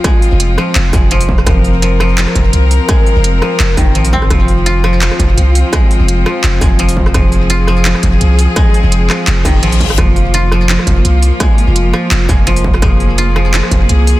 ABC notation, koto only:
X:1
M:4/4
L:1/8
Q:"Swing 16ths" 1/4=169
K:Fm
V:1 name="Koto" clef=bass
A, z2 F, z A, F, z | F, z F, F, F,4 | A, z2 F, z E, F, C | F, z F F, F,4 |
A, z2 F, z A, F, z | F, z F F, F,4 | A, z2 F, z E, F, z | F, z F F, F,4 |
A, z2 F, z A, F, z | F, z F F, F,4 |]